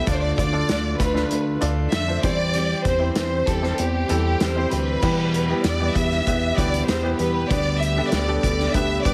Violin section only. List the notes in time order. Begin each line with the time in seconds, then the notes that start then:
0.08 D5
0.14 C5
0.20 D5
0.36 D5
1.00 B4
1.92 E5
2.24 D5
2.86 C5
3.17 C5
3.49 A4
3.80 G4
4.41 C5
4.72 B4
5.64 D5
5.94 E5
6.56 D5
6.86 C5
7.16 B4
7.48 D5
7.79 E5
8.08 D5
8.41 D5
8.72 E5
9.03 D5